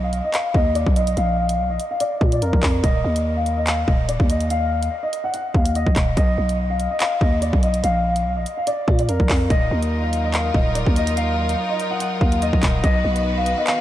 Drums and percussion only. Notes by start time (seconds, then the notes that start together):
0.13 closed hi-hat
0.34 clap, closed hi-hat
0.54 kick
0.75 closed hi-hat
0.86 kick
0.96 closed hi-hat
1.07 closed hi-hat
1.17 closed hi-hat
1.49 closed hi-hat
1.80 closed hi-hat
2.00 closed hi-hat
2.21 kick
2.32 closed hi-hat
2.42 closed hi-hat
2.53 kick
2.63 kick, clap, open hi-hat
2.84 kick, closed hi-hat
3.16 closed hi-hat
3.46 closed hi-hat
3.67 clap, closed hi-hat
3.88 kick
4.09 closed hi-hat
4.20 kick
4.30 closed hi-hat
4.41 closed hi-hat
4.50 closed hi-hat
4.83 closed hi-hat
5.13 closed hi-hat
5.34 closed hi-hat
5.54 kick
5.66 closed hi-hat
5.75 closed hi-hat
5.87 kick
5.96 kick, clap, closed hi-hat
6.17 kick, closed hi-hat
6.49 closed hi-hat
6.80 closed hi-hat
7.00 clap, closed hi-hat
7.21 kick
7.42 closed hi-hat
7.53 kick
7.63 closed hi-hat
7.74 closed hi-hat
7.84 closed hi-hat
8.16 closed hi-hat
8.46 closed hi-hat
8.67 closed hi-hat
8.88 kick
8.99 closed hi-hat
9.09 closed hi-hat
9.20 kick
9.29 kick, clap, open hi-hat
9.50 kick, closed hi-hat
9.83 closed hi-hat
10.13 closed hi-hat
10.34 clap, closed hi-hat
10.54 kick
10.75 closed hi-hat
10.86 kick
10.96 closed hi-hat
11.07 closed hi-hat
11.17 closed hi-hat
11.49 closed hi-hat
11.80 closed hi-hat
12.00 closed hi-hat
12.21 kick
12.32 closed hi-hat
12.42 closed hi-hat
12.53 kick
12.63 kick, clap, closed hi-hat
12.84 kick, closed hi-hat
13.16 closed hi-hat
13.46 closed hi-hat
13.67 clap, closed hi-hat